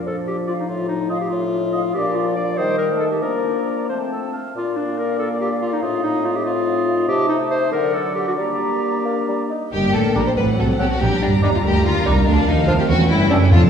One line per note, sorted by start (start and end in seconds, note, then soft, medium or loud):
0.00 1.92 F3 soft
0.00 0.66 D4 soft
0.06 0.59 F3 soft
0.06 0.16 A4 medium
0.28 0.37 G4 medium
0.47 0.53 F4 medium
0.47 0.55 D5 soft
0.47 0.59 F5 soft
0.59 0.70 D#4 medium
0.68 1.22 A2 medium
0.68 1.93 D#4 soft
0.68 0.88 F4 medium
0.88 1.11 D#4 medium
1.09 1.20 F4 medium
1.09 1.18 D#5 soft
1.09 1.21 F5 soft
1.21 1.29 G4 medium
1.29 1.85 A2 medium
1.29 1.93 F4 medium
1.73 1.81 D#5 medium
1.73 1.84 F5 medium
1.94 2.55 A#2 soft
1.94 2.55 F3 medium
1.94 2.55 D4 medium
1.94 2.17 G4 medium
1.94 2.54 D5 medium
1.94 2.54 F5 medium
2.15 2.36 F4 medium
2.36 2.59 D5 medium
2.58 3.23 D#3 medium
2.58 2.90 G3 soft
2.58 3.23 D#4 medium
2.58 2.78 C5 medium
2.58 3.23 D#5 medium
2.58 2.90 G5 soft
2.78 2.88 A#4 medium
2.90 3.23 A3 soft
2.90 3.23 A5 soft
3.00 3.05 A4 medium
3.11 3.21 G4 soft
3.22 3.88 F3 soft
3.22 3.88 A#3 soft
3.22 3.89 D4 soft
3.22 3.88 A#4 medium
3.22 3.88 D5 soft
3.22 3.88 A#5 soft
3.89 4.33 F3 soft
3.89 4.34 A3 soft
3.89 4.34 C4 soft
3.89 3.99 C5 soft
3.89 4.34 A5 soft
4.12 4.32 A4 soft
4.33 4.55 F5 soft
4.55 5.79 A#2 medium
4.55 5.78 A#3 medium
4.55 5.78 D4 medium
4.55 4.78 F4 medium
4.55 5.79 D5 soft
4.55 7.04 F5 soft
4.77 5.00 D4 medium
4.99 5.18 A#4 medium
5.19 5.29 A4 medium
5.41 5.50 G4 medium
5.61 5.75 F4 medium
5.73 5.84 D#4 medium
5.82 7.05 A2 medium
5.82 7.05 C4 medium
5.82 7.68 D#4 medium
5.82 6.03 F4 medium
5.82 7.68 D#5 soft
6.03 6.27 D#4 medium
6.25 6.37 F4 medium
6.36 6.45 G4 medium
6.45 7.07 F4 medium
7.08 7.70 C3 medium
7.08 7.68 A3 medium
7.08 7.28 G4 medium
7.08 7.71 A5 medium
7.29 7.38 D#4 medium
7.50 7.71 C5 medium
7.71 8.39 D3 medium
7.71 8.34 F#3 medium
7.71 9.47 D4 medium
7.71 7.95 A#4 medium
7.71 9.47 D5 medium
7.71 8.38 F#5 soft
7.94 8.14 A4 medium
8.15 8.26 G4 medium
8.28 8.32 F#4 medium
8.37 9.02 G3 medium
8.37 9.47 A#3 medium
8.37 9.49 G4 medium
8.37 9.49 A#5 soft
9.05 9.15 A#3 medium
9.28 9.38 G3 soft
9.50 9.72 D#4 medium
9.72 9.93 G1 medium
9.72 9.93 G2 medium
9.72 10.33 A#3 soft
9.72 10.33 A#3 medium
9.72 10.33 D4 medium
9.72 9.93 G4 medium
9.72 10.33 A#4 medium
9.72 10.33 G5 soft
9.94 10.02 A1 soft
9.94 10.03 A2 soft
9.94 10.16 A4 medium
10.15 10.24 A#1 medium
10.15 10.23 A#2 medium
10.15 10.23 G3 soft
10.15 10.23 D4 medium
10.15 10.26 A#4 medium
10.15 10.23 D5 soft
10.15 10.26 A#5 medium
10.26 10.31 C5 medium
10.37 10.58 A1 medium
10.37 10.58 A2 medium
10.37 11.01 F#3 medium
10.37 11.01 C4 medium
10.37 11.00 A4 soft
10.37 10.45 B4 medium
10.37 11.00 F#5 soft
10.58 10.66 C2 medium
10.58 10.67 C3 medium
10.58 10.67 A4 medium
10.79 10.88 B1 medium
10.79 10.87 B2 medium
10.79 10.87 F#3 medium
10.79 10.87 C4 medium
10.79 10.90 G4 medium
10.79 10.87 F#5 soft
10.79 10.90 A5 medium
10.91 11.01 F#4 medium
11.00 11.09 A#1 medium
11.00 11.09 A#2 medium
11.00 12.24 G3 soft
11.00 12.24 G3 medium
11.00 12.85 D4 medium
11.00 11.22 G4 medium
11.00 11.63 G4 soft
11.00 11.64 A#5 soft
11.21 11.42 G1 medium
11.21 11.43 G2 medium
11.21 11.43 D4 medium
11.42 11.64 D#2 medium
11.42 11.50 G3 medium
11.42 11.50 D4 medium
11.42 11.47 D#4 medium
11.42 11.50 D5 medium
11.42 11.53 A#5 medium
11.54 11.59 F4 medium
11.64 11.85 D2 medium
11.64 11.85 G4 medium
11.64 12.89 A#4 medium
11.64 12.26 A#5 medium
11.85 12.06 D#2 medium
11.85 12.05 F4 medium
12.05 12.26 C2 medium
12.05 12.13 G3 medium
12.05 12.14 D4 medium
12.05 12.27 D#4 medium
12.05 12.13 D5 medium
12.05 12.15 A#5 medium
12.26 12.34 D2 medium
12.26 12.35 D2 medium
12.26 12.89 F3 medium
12.26 13.49 A3 medium
12.26 12.47 D4 medium
12.26 12.88 F5 medium
12.46 12.67 D#2 medium
12.46 12.68 D#4 medium
12.67 12.88 F1 medium
12.67 12.89 F2 medium
12.67 12.75 F3 medium
12.67 12.75 D4 medium
12.67 12.71 F4 medium
12.67 12.75 F5 medium
12.67 12.77 A5 medium
12.79 12.83 G4 medium
12.88 13.09 E1 medium
12.88 13.09 E2 medium
12.88 13.51 G3 medium
12.88 13.50 C#4 medium
12.88 13.09 F#4 medium
12.88 13.51 B4 medium
12.88 13.51 G5 medium
13.09 13.30 G1 medium
13.09 13.30 G2 medium
13.09 13.30 E4 medium
13.30 13.51 F#1 medium
13.30 13.51 F#2 medium
13.30 13.37 G3 medium
13.30 13.38 C#4 medium
13.30 13.40 D4 medium
13.30 13.38 E5 medium
13.30 13.40 G5 medium
13.41 13.51 C#4 medium
13.50 13.70 F1 medium
13.50 13.70 F2 medium
13.50 13.70 F3 medium
13.50 13.70 D4 medium
13.50 13.60 F4 loud
13.50 13.70 A4 medium
13.50 13.70 A5 medium